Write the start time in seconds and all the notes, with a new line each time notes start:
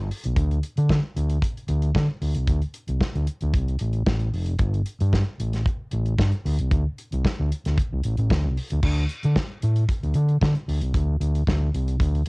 0.11 open hi-hat
0.24 B1, closed hi-hat
0.36 D2, kick, closed hi-hat
0.51 closed hi-hat
0.63 closed hi-hat
0.77 D3, closed hi-hat
0.90 kick, snare
1.16 D2, closed hi-hat
1.30 closed hi-hat
1.42 kick, closed hi-hat
1.57 closed hi-hat
1.68 D2, closed hi-hat
1.82 closed hi-hat
1.95 D3, kick, snare
2.22 D2, open hi-hat
2.35 C2, closed hi-hat
2.48 D2, kick, closed hi-hat
2.62 closed hi-hat
2.74 closed hi-hat
2.88 C2, closed hi-hat
3.01 kick, snare
3.15 D2, closed hi-hat
3.27 closed hi-hat
3.41 D2, closed hi-hat
3.54 C2, kick, closed hi-hat
3.68 closed hi-hat
3.79 A1, closed hi-hat
3.93 closed hi-hat
4.06 A1, kick, snare
4.19 closed hi-hat
4.34 F1, open hi-hat
4.46 closed hi-hat
4.59 G1, kick, closed hi-hat
4.74 closed hi-hat
4.86 closed hi-hat
5.00 G2, closed hi-hat
5.13 kick, snare
5.40 A1, closed hi-hat
5.53 snare, closed hi-hat
5.66 kick, closed hi-hat
5.91 A1, closed hi-hat
6.06 closed hi-hat
6.19 G2, kick, snare
6.32 closed hi-hat
6.46 D2, open hi-hat
6.59 C2, closed hi-hat
6.71 D2, kick, closed hi-hat
6.98 closed hi-hat
7.12 C2, closed hi-hat
7.25 kick, snare
7.40 D2
7.52 closed hi-hat
7.65 D2, snare, closed hi-hat
7.78 kick, closed hi-hat
7.93 C2
8.04 A1, closed hi-hat
8.17 A1, closed hi-hat
8.30 D2, kick, snare
8.46 C2
8.57 open hi-hat
8.70 D2, closed hi-hat
8.83 D2, kick, crash
9.09 closed hi-hat
9.23 D3, closed hi-hat
9.36 kick, snare
9.62 A2, closed hi-hat
9.76 closed hi-hat
9.89 kick, closed hi-hat
10.03 D2, closed hi-hat
10.14 D3, closed hi-hat
10.29 closed hi-hat
10.41 D3, kick, snare
10.55 closed hi-hat
10.68 D2, open hi-hat
10.81 C2, closed hi-hat
10.94 D2, kick, closed hi-hat
11.20 D2, closed hi-hat
11.35 closed hi-hat
11.47 D2, kick, snare
11.74 C2, closed hi-hat
11.88 closed hi-hat
12.00 D2, kick, closed hi-hat
12.15 closed hi-hat